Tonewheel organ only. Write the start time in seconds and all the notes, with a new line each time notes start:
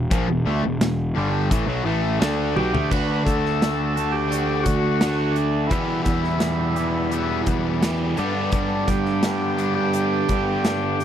2.56 G4
2.91 B4
3.25 A4
4.12 G4
4.60 F#4 G4
5.32 D4
5.67 E4
6.04 E4
8.18 D4
8.53 D4
8.87 G4
9.75 G4